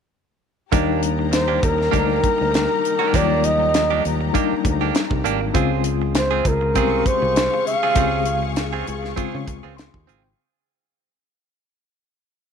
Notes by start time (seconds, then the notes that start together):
0.72 D#2 G3 A#3 D4 D#4 G4 A#5, kick, closed hi-hat
1.02 closed hi-hat
1.19 muted clean electric guitar stroke
1.31 C5, muted clean electric guitar stroke, snare, closed hi-hat
1.48 A#3 D4 G4
1.61 D#2 A#4, muted clean electric guitar stroke, kick, closed hi-hat
1.78 muted clean electric guitar stroke, snare
1.91 D2 G3 A#3 D4 D#4 G4, kick, closed hi-hat
2.22 muted clean electric guitar stroke, kick, closed hi-hat
2.38 D2, muted clean electric guitar stroke
2.51 muted clean electric guitar stroke, closed hi-hat
2.55 snare
2.69 muted clean electric guitar stroke
2.85 closed hi-hat
2.99 A#3 D4 G4
3.13 D#2 D#3 F#3 A#3 D4 F4 G4 D5, kick, closed hi-hat
3.20 G3
3.44 D#5, closed hi-hat
3.60 muted clean electric guitar stroke
3.74 muted clean electric guitar stroke, snare, closed hi-hat
3.90 A#3 D4 G4
4.04 D#2, muted clean electric guitar stroke, closed hi-hat
4.21 muted clean electric guitar stroke
4.33 G3 A#3 D4 D#4 G4, kick, closed hi-hat
4.53 muted fingered electric bass stroke
4.65 D2, muted clean electric guitar stroke, kick, closed hi-hat
4.81 A#3 D4 G4
4.95 muted clean electric guitar stroke, snare, closed hi-hat
5.10 C2, muted clean electric guitar stroke, kick
5.24 G#1 A#3 D4 G4, closed hi-hat
5.41 muted clean electric guitar stroke
5.54 C#2 C#3 G#3 C4 F4 G#4, kick, closed hi-hat
5.84 closed hi-hat
6.02 muted clean electric guitar stroke
6.14 C5, muted clean electric guitar stroke, snare, closed hi-hat
6.31 C4 F4 G#4
6.45 C#2 A#4, muted clean electric guitar stroke, kick, closed hi-hat
6.61 muted clean electric guitar stroke
6.74 C2 G#3 C4 C#4 F4 G4 G#4 F5 C#6, kick, closed hi-hat
7.06 C5, muted clean electric guitar stroke, kick, closed hi-hat
7.22 C2, muted clean electric guitar stroke
7.36 muted clean electric guitar stroke, snare, closed hi-hat
7.54 muted clean electric guitar stroke
7.67 F5, closed hi-hat
7.83 C4 F4 G#4
7.94 C#2 C#3 G#3 C4 F4 G4 G#4, kick, closed hi-hat
8.03 G#4
8.25 closed hi-hat
8.43 muted clean electric guitar stroke
8.56 muted clean electric guitar stroke, snare, closed hi-hat
8.73 C4 F4 G#4
8.87 C#2, muted clean electric guitar stroke, closed hi-hat
9.03 muted clean electric guitar stroke, snare
9.15 C#3 G#3 C4 F4 G#4, kick, closed hi-hat
9.35 C#3
9.47 C#2, muted clean electric guitar stroke, kick, closed hi-hat
9.63 C#2 C4 F4 G#4
9.77 C6, muted clean electric guitar stroke, snare, closed hi-hat
9.94 D#2, muted clean electric guitar stroke, kick
10.07 G#1 C4 F4 G#4, closed hi-hat
10.18 G5
10.24 muted clean electric guitar stroke